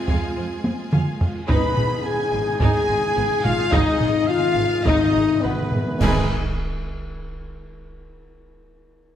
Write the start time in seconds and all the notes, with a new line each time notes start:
Already playing: C3 G#3 C4 F4 G#4 C5 G#5
0.08 F2 F5 G#5, taiko
0.36 F2 C5 F5
0.64 F2 G#4 C5, taiko high
0.92 F2 F5 G#5, taiko mid
1.21 F2 C5 F5, taiko low
1.47 G#1 G#2 G#3 D#4 G#4 B4 G#5 B5, taiko, tam-tam
1.56 G#2
1.63 G#2
1.71 G#2
1.77 G#1 G#2 G#3, taiko low-mid
1.86 G#2
1.94 G#2
2.01 G#2 G#5
2.05 G#2 G#4
2.16 G#2
2.24 G#2
2.32 G#1 G#2 G#3
2.39 G#2
2.47 G#2
2.54 G#2
2.59 G#1 G#2 D#4 G#4 G#5, taiko
2.69 G#2
2.76 G#2
2.84 G#2
2.88 G#1 G#2 G#3
3.00 G#2
3.07 G#2
3.16 G#1 G#2 B3
3.23 G#2
3.31 G#2
3.38 G#2
3.44 G#1 G#2 G#3 F4 F5, taiko low-mid
3.53 G#2
3.61 G#2
3.67 G#2
3.72 G#1 G#2 D#4 D#5, taiko
3.83 G#2
3.91 G#2
3.99 G#1 G#2 G#3, taiko low-mid
4.07 G#2
4.14 G#2
4.22 G#2
4.28 G#2 F4 F5
4.37 G#2
4.44 G#2
4.52 G#2
4.57 G#1 G#2 G#3
4.67 G#2
4.74 G#2
4.82 G#2 D#5, taiko
4.86 G#1 G#2 D#4 D#5
4.97 G#2
5.05 G#2
5.13 G#1 G#2 G#3
5.21 G#2
5.28 G#2
5.36 G#2
5.41 G#1 G#2 B3 B4
5.52 G#2
5.61 G#2
5.68 G#1 G#2, taiko low-mid
5.73 G#2 G#3
5.84 G#2
5.92 G#2
6.00 G#1 G#2 G#3 B3 D#4 G#4 B4 G#5, concert bass drum, crash